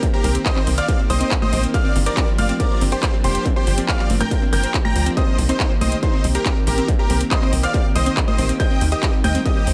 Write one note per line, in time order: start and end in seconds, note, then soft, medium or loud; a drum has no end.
0.03 0.09 C4 medium
0.03 kick loud
0.03 closed hi-hat medium
0.13 0.28 D#3 medium
0.13 0.28 A#3 medium
0.13 0.28 C4 medium
0.13 0.28 G4 medium
0.13 0.36 G4 medium
0.13 0.36 A#4 loud
0.13 0.17 C5 medium
0.13 0.35 A#5 medium
0.24 0.38 C2 loud
0.24 0.31 C4 loud
0.24 open hi-hat loud
0.35 0.42 D#3 medium
0.35 0.42 A#3 medium
0.35 0.41 C4 medium
0.35 0.42 C4 medium
0.35 0.42 G4 medium
0.35 closed hi-hat medium
0.46 0.61 D#3 medium
0.46 0.61 A#3 medium
0.46 0.61 C4 medium
0.46 0.61 G4 medium
0.46 0.50 C5 medium
0.46 0.68 C5 medium
0.46 0.68 D#5 loud
0.46 0.68 D#6 loud
0.46 kick loud
0.46 clap loud
0.46 closed hi-hat medium
0.56 0.63 C4 loud
0.56 clap soft
0.67 0.81 C2 medium
0.67 0.82 D#3 medium
0.67 0.82 A#3 medium
0.67 0.74 C4 medium
0.67 0.82 C4 medium
0.67 0.82 G4 medium
0.67 open hi-hat loud
0.78 0.82 C5 medium
0.78 1.00 D5 medium
0.78 1.00 F5 loud
0.78 1.00 F6 medium
0.78 closed hi-hat medium
0.88 0.96 D#3 medium
0.88 0.96 A#3 medium
0.88 0.95 C4 loud
0.88 0.96 C4 medium
0.88 0.96 G4 loud
0.88 kick loud
0.88 closed hi-hat medium
0.99 1.14 D#3 medium
0.99 1.14 A#3 medium
0.99 1.06 C4 medium
0.99 1.14 C4 medium
0.99 1.14 G4 medium
1.10 1.23 C2 medium
1.10 1.32 C5 medium
1.10 1.14 C5 medium
1.10 1.32 D#5 loud
1.10 1.32 D#6 loud
1.10 open hi-hat loud
1.21 1.36 D#3 medium
1.21 1.36 A#3 medium
1.21 1.27 C4 loud
1.21 1.36 C4 medium
1.21 1.36 G4 medium
1.21 closed hi-hat medium
1.31 kick loud
1.31 clap loud
1.31 closed hi-hat medium
1.42 1.57 D#3 medium
1.42 1.57 A#3 medium
1.42 1.57 C4 medium
1.42 1.57 G4 medium
1.42 1.46 C5 medium
1.42 1.64 C5 medium
1.42 1.64 D#5 loud
1.42 1.64 D#6 loud
1.42 high conga medium
1.53 1.66 A#1 loud
1.53 1.59 C4 loud
1.53 open hi-hat loud
1.63 1.71 D#3 medium
1.63 1.71 A#3 medium
1.63 1.70 C4 medium
1.63 1.71 C4 medium
1.63 1.71 G4 medium
1.63 closed hi-hat medium
1.74 1.78 C5 medium
1.74 1.96 D5 medium
1.74 1.96 F5 loud
1.74 1.96 F6 loud
1.74 kick loud
1.74 closed hi-hat medium
1.85 2.00 F3 medium
1.85 2.00 A#3 medium
1.85 1.91 C4 loud
1.85 2.00 D4 medium
1.85 2.00 G4 medium
1.96 2.09 G1 loud
1.96 2.02 C4 medium
1.96 open hi-hat loud
2.06 2.14 F3 medium
2.06 2.14 A#3 medium
2.06 2.14 D4 medium
2.06 2.14 G4 medium
2.06 2.28 A#4 medium
2.06 2.10 C5 medium
2.06 2.28 D5 loud
2.06 2.28 D6 medium
2.06 closed hi-hat medium
2.17 2.32 F3 loud
2.17 2.32 A#3 medium
2.17 2.24 C4 loud
2.17 2.32 D4 medium
2.17 2.32 G4 medium
2.17 kick loud
2.17 clap loud
2.17 closed hi-hat medium
2.28 2.34 C4 medium
2.38 2.52 G1 medium
2.38 2.54 F3 medium
2.38 2.54 A#3 medium
2.38 2.53 D4 medium
2.38 2.54 G4 medium
2.38 2.42 C5 medium
2.38 2.53 D5 medium
2.38 2.53 F5 medium
2.38 2.53 F6 medium
2.38 open hi-hat loud
2.38 high conga medium
2.49 2.56 C4 loud
2.49 closed hi-hat medium
2.60 2.67 F3 medium
2.60 2.67 A#3 medium
2.60 2.66 C4 medium
2.60 2.67 D4 medium
2.60 2.67 G4 medium
2.60 2.82 A#4 medium
2.60 2.82 D5 medium
2.60 2.82 D6 medium
2.60 kick loud
2.60 closed hi-hat medium
2.71 2.86 F3 medium
2.71 2.86 A#3 medium
2.71 2.86 D4 medium
2.71 2.86 G4 medium
2.71 2.75 C5 medium
2.81 2.95 G1 medium
2.81 2.88 C4 loud
2.81 open hi-hat loud
2.92 3.07 F3 medium
2.92 3.07 A#3 medium
2.92 2.99 C4 medium
2.92 3.07 D4 medium
2.92 3.14 G4 medium
2.92 3.07 G4 medium
2.92 3.14 C5 medium
2.92 3.14 C6 medium
2.92 closed hi-hat medium
3.03 3.07 C5 medium
3.03 kick loud
3.03 clap loud
3.03 closed hi-hat medium
3.13 3.29 F3 medium
3.13 3.29 A#3 medium
3.13 3.20 C4 loud
3.13 3.29 D4 medium
3.13 3.29 G4 medium
3.24 3.38 F1 medium
3.24 3.31 C4 medium
3.24 3.46 G4 medium
3.24 3.46 C5 medium
3.24 3.46 C6 medium
3.24 open hi-hat loud
3.35 3.42 F3 medium
3.35 3.42 A#3 medium
3.35 3.42 D4 medium
3.35 3.42 G4 medium
3.35 3.39 C5 medium
3.35 closed hi-hat medium
3.46 3.52 C4 loud
3.46 kick loud
3.46 closed hi-hat medium
3.56 3.71 F3 medium
3.56 3.71 A#3 medium
3.56 3.63 C4 medium
3.56 3.71 D4 medium
3.56 3.78 G4 medium
3.56 3.71 G4 medium
3.56 3.78 C5 medium
3.56 3.78 C6 medium
3.67 3.81 G1 loud
3.67 3.71 C5 medium
3.67 open hi-hat loud
3.78 3.85 F3 medium
3.78 3.85 A#3 medium
3.78 3.84 C4 medium
3.78 3.85 D4 medium
3.78 3.85 G4 medium
3.78 closed hi-hat medium
3.88 4.03 F3 medium
3.88 4.03 A#3 medium
3.88 4.03 D4 medium
3.88 4.03 G4 medium
3.88 4.10 D5 medium
3.88 4.10 F5 medium
3.88 4.10 F6 loud
3.88 kick loud
3.88 clap loud
3.88 closed hi-hat medium
3.99 4.03 C5 medium
3.99 clap soft
4.10 4.23 G1 medium
4.10 4.25 F3 medium
4.10 4.25 A#3 medium
4.10 4.16 C4 loud
4.10 4.25 D4 medium
4.10 4.25 G4 medium
4.10 open hi-hat loud
4.10 high conga medium
4.20 4.27 C4 medium
4.20 4.43 A#4 medium
4.20 4.43 G5 loud
4.20 4.43 G6 loud
4.20 closed hi-hat medium
4.20 high conga medium
4.31 4.39 F3 medium
4.31 4.39 A#3 medium
4.31 4.39 D4 medium
4.31 4.39 G4 medium
4.31 4.35 C5 medium
4.31 kick loud
4.31 closed hi-hat medium
4.42 4.57 F3 medium
4.42 4.57 A#3 medium
4.42 4.49 C4 loud
4.42 4.57 D4 medium
4.42 4.57 G4 medium
4.53 4.66 G1 medium
4.53 4.59 C4 medium
4.53 4.75 A#4 medium
4.53 4.75 G5 loud
4.53 4.75 G6 medium
4.53 open hi-hat loud
4.63 4.78 F3 medium
4.63 4.78 A#3 medium
4.63 4.79 D4 medium
4.63 4.79 G4 medium
4.63 4.67 C5 medium
4.63 closed hi-hat medium
4.74 4.81 C4 loud
4.74 kick loud
4.74 clap loud
4.74 closed hi-hat medium
4.85 5.00 F3 medium
4.85 5.00 A#3 medium
4.85 4.91 C4 medium
4.85 5.00 D4 medium
4.85 5.00 G4 medium
4.85 5.07 G5 medium
4.85 5.07 A#5 loud
4.85 5.07 A#6 medium
4.85 high conga medium
4.96 5.09 D2 medium
4.96 5.00 C5 medium
4.96 open hi-hat loud
5.06 5.14 F3 medium
5.06 5.14 A#3 medium
5.06 5.13 C4 loud
5.06 5.14 D4 medium
5.06 5.14 G4 medium
5.06 closed hi-hat medium
5.17 5.24 C4 loud
5.17 5.39 C5 medium
5.17 5.39 D#5 loud
5.17 5.39 D#6 loud
5.17 kick loud
5.17 closed hi-hat medium
5.28 5.43 D#3 medium
5.28 5.43 A#3 medium
5.28 5.34 C4 medium
5.28 5.43 C4 medium
5.28 5.43 G4 medium
5.38 5.52 C2 loud
5.38 5.42 C5 medium
5.38 open hi-hat loud
5.49 5.57 D#3 medium
5.49 5.57 A#3 medium
5.49 5.56 C4 loud
5.49 5.57 C4 medium
5.49 5.71 D#4 medium
5.49 5.57 G4 medium
5.49 5.71 C5 loud
5.49 5.71 C6 medium
5.49 closed hi-hat medium
5.60 5.75 D#3 medium
5.60 5.75 A#3 medium
5.60 5.75 C4 medium
5.60 5.75 G4 medium
5.60 kick loud
5.60 clap loud
5.60 closed hi-hat medium
5.71 5.75 C5 medium
5.81 5.95 C2 medium
5.81 5.96 D#3 medium
5.81 5.96 A#3 medium
5.81 5.88 C4 loud
5.81 5.96 C4 medium
5.81 5.96 G4 medium
5.81 5.96 C5 medium
5.81 5.96 D#5 medium
5.81 5.96 D#6 medium
5.81 open hi-hat loud
5.81 high conga medium
5.92 5.99 C4 medium
5.92 closed hi-hat medium
6.03 6.10 D#3 medium
6.03 6.10 A#3 medium
6.03 6.10 C4 medium
6.03 6.25 D#4 medium
6.03 6.10 G4 medium
6.03 6.07 C5 medium
6.03 6.25 C5 loud
6.03 6.25 C6 medium
6.03 kick loud
6.03 closed hi-hat medium
6.13 6.29 D#3 medium
6.13 6.29 A#3 medium
6.13 6.20 C4 loud
6.13 6.29 C4 medium
6.13 6.29 G4 medium
6.24 6.38 C2 medium
6.24 6.31 C4 medium
6.24 open hi-hat loud
6.35 6.50 D#3 medium
6.35 6.50 A#3 medium
6.35 6.50 C4 medium
6.35 6.50 G4 medium
6.35 6.57 G4 medium
6.35 6.57 A#4 loud
6.35 6.39 C5 medium
6.35 6.57 A#5 medium
6.35 closed hi-hat medium
6.46 6.52 C4 loud
6.46 kick loud
6.46 clap loud
6.46 closed hi-hat medium
6.56 6.71 D#3 medium
6.56 6.71 A#3 medium
6.56 6.63 C4 medium
6.56 6.71 C4 medium
6.56 6.71 G4 medium
6.67 6.81 A#1 medium
6.67 6.89 G4 medium
6.67 6.89 A#4 medium
6.67 6.71 C5 medium
6.67 6.89 A#5 medium
6.67 open hi-hat loud
6.78 6.85 D#3 medium
6.78 6.85 A#3 medium
6.78 6.84 C4 loud
6.78 6.85 C4 medium
6.78 6.85 G4 medium
6.78 closed hi-hat medium
6.88 6.95 C4 medium
6.88 kick loud
6.88 closed hi-hat medium
6.99 7.14 D#3 medium
6.99 7.14 A#3 medium
6.99 7.14 C4 medium
6.99 7.21 G4 medium
6.99 7.14 G4 medium
6.99 7.21 A#4 loud
6.99 7.03 C5 medium
6.99 7.21 A#5 medium
7.10 7.23 C2 loud
7.10 7.16 C4 loud
7.10 open hi-hat loud
7.21 7.28 D#3 medium
7.21 7.28 A#3 medium
7.21 7.27 C4 medium
7.21 7.28 C4 medium
7.21 7.28 G4 medium
7.21 closed hi-hat medium
7.31 7.46 D#3 medium
7.31 7.46 A#3 medium
7.31 7.46 C4 medium
7.31 7.46 G4 medium
7.31 7.35 C5 medium
7.31 7.53 C5 medium
7.31 7.53 D#5 medium
7.31 7.53 D#6 loud
7.31 kick loud
7.31 clap loud
7.31 closed hi-hat medium
7.42 7.49 C4 loud
7.42 clap soft
7.53 7.66 C2 medium
7.53 7.68 D#3 medium
7.53 7.68 A#3 medium
7.53 7.59 C4 medium
7.53 7.68 C4 medium
7.53 7.68 G4 medium
7.53 open hi-hat loud
7.63 7.67 C5 medium
7.63 7.85 D5 medium
7.63 7.86 F5 loud
7.63 7.85 F6 loud
7.63 closed hi-hat medium
7.74 7.82 D#3 medium
7.74 7.82 A#3 medium
7.74 7.82 C4 medium
7.74 7.81 C4 loud
7.74 7.82 G4 medium
7.74 kick loud
7.74 closed hi-hat medium
7.85 8.00 D#3 medium
7.85 8.00 A#3 medium
7.85 8.00 C4 medium
7.85 7.91 C4 medium
7.85 8.00 G4 medium
7.95 8.09 C2 medium
7.95 8.00 C5 medium
7.95 8.18 C5 medium
7.95 8.18 D#5 loud
7.95 8.18 D#6 medium
7.95 open hi-hat loud
8.06 8.21 D#3 medium
8.06 8.21 A#3 medium
8.06 8.21 C4 medium
8.06 8.13 C4 loud
8.06 8.21 G4 medium
8.06 closed hi-hat medium
8.17 kick loud
8.17 clap loud
8.17 closed hi-hat medium
8.28 8.43 D#3 medium
8.28 8.43 A#3 medium
8.28 8.43 C4 medium
8.28 8.43 G4 medium
8.28 8.32 C5 medium
8.28 8.50 C5 medium
8.28 8.50 D#5 loud
8.28 8.50 D#6 medium
8.28 high conga medium
8.38 8.52 A#1 loud
8.38 8.45 C4 loud
8.38 open hi-hat loud
8.49 8.57 D#3 medium
8.49 8.57 A#3 medium
8.49 8.57 C4 medium
8.49 8.56 C4 medium
8.49 8.57 G4 medium
8.49 closed hi-hat medium
8.60 8.64 C5 medium
8.60 8.82 D#5 medium
8.60 8.82 G5 loud
8.60 8.82 G6 loud
8.60 kick loud
8.60 closed hi-hat medium
8.70 8.85 D#3 medium
8.70 8.85 G3 medium
8.70 8.85 A#3 medium
8.70 8.77 C4 loud
8.70 8.85 G4 medium
8.81 8.95 D#2 loud
8.81 8.88 C4 medium
8.81 open hi-hat loud
8.92 8.99 D#3 medium
8.92 8.99 G3 loud
8.92 8.99 A#3 medium
8.92 8.99 G4 medium
8.92 9.14 G4 medium
8.92 8.96 C5 medium
8.92 9.14 D#5 loud
8.92 9.14 D#6 medium
8.92 closed hi-hat medium
9.03 9.18 D#3 medium
9.03 9.18 G3 loud
9.03 9.18 A#3 loud
9.03 9.09 C4 loud
9.03 9.18 G4 medium
9.03 kick loud
9.03 clap loud
9.03 closed hi-hat medium
9.13 9.20 C4 medium
9.24 9.38 D#2 medium
9.24 9.39 D#3 medium
9.24 9.39 G3 medium
9.24 9.39 A#3 medium
9.24 9.39 G4 medium
9.24 9.28 C5 medium
9.24 9.39 D#5 medium
9.24 9.39 G5 medium
9.24 9.39 G6 medium
9.24 open hi-hat loud
9.24 high conga medium
9.35 9.41 C4 loud
9.35 closed hi-hat medium
9.45 9.53 D#3 medium
9.45 9.53 G3 medium
9.45 9.53 A#3 medium
9.45 9.52 C4 medium
9.45 9.53 G4 medium
9.45 9.68 G4 medium
9.45 9.68 D#5 medium
9.45 9.68 D#6 loud
9.45 kick loud
9.45 closed hi-hat medium
9.56 9.71 D#3 medium
9.56 9.71 G3 medium
9.56 9.71 A#3 medium
9.56 9.71 G4 medium
9.56 9.60 C5 medium
9.67 9.73 D#2 medium
9.67 9.73 C4 loud
9.67 open hi-hat loud